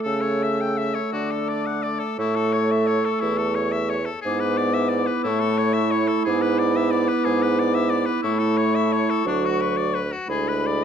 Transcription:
Already playing: A3 A4
0.03 C#3 A4 E6
0.22 C#5
0.43 E5
0.61 G5
0.78 E5
0.95 C#5
1.12 D3 F#4 D6
1.32 A4
1.49 D5
1.66 F#5
1.83 D5
2.00 A4
2.19 A2 A3 E4 A4 C#6
2.36 A4
2.53 C#5
2.72 E5
2.87 C#5
3.05 A4
3.21 E2 E4
3.38 A4
3.55 C#5
3.72 E5
3.90 C#5
4.06 A4
4.22 G#2 G#4 D6
4.26 B3 E4
4.40 B4
4.58 D5
4.74 E5
4.89 D5
5.07 B4
5.24 A2 A3 E4 C#6
5.40 A4
5.58 C#5
5.74 E5
5.92 C#5
6.08 A4
6.25 G#2 B3 G#4 D6
6.42 B4
6.59 D5
6.76 E5
6.91 D5
7.09 B4
7.25 G#2 G#4
7.42 B4
7.60 D5
7.75 E5
7.90 D5
8.06 B4
8.23 A2 A3 E4 C#6
8.39 A4
8.58 C#5
8.75 E5
8.93 C#5
9.10 A4
9.25 D2 F#3 D4 F#4
9.46 F#4
9.61 B4
9.77 D5
9.95 B4
10.12 F#4
10.27 D2 G#3 E4 G#4 B5
10.48 B4
10.67 D5

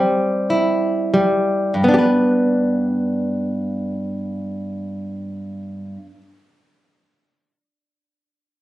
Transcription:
Already playing: G3 C4
0.50 E4
1.14 G3
1.74 G2
1.84 B3
1.89 D4
1.94 G4
1.99 B4

